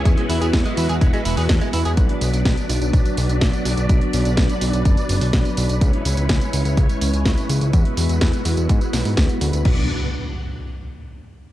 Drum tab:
CC |----------------|----------------|----------------|----------------|
HH |xxoxxxoxxxooxxox|xxoxxxoxxxoxxxox|xxoxxxoxxxooxxox|xxoxxxoxxxoxxxox|
TB |x-xxxxxxxxxxxxxx|x-xxxxxxxxxxxxxx|x-xxxxxxxxxxxxxx|x-xxxxxxxxxxxxxx|
SD |----o-------o---|----o-------o---|----o-------o---|----o-------o---|
BD |o---o---o---o---|o---o---o---o---|o---o---o---o---|o---o---o---o---|

CC |----------------|x---------------|
HH |xxoxxxoxxxooxxox|----------------|
TB |x-xxxxxxxxxxxxxx|----------------|
SD |----o-----o-o---|----------------|
BD |o---o---o---o---|o---------------|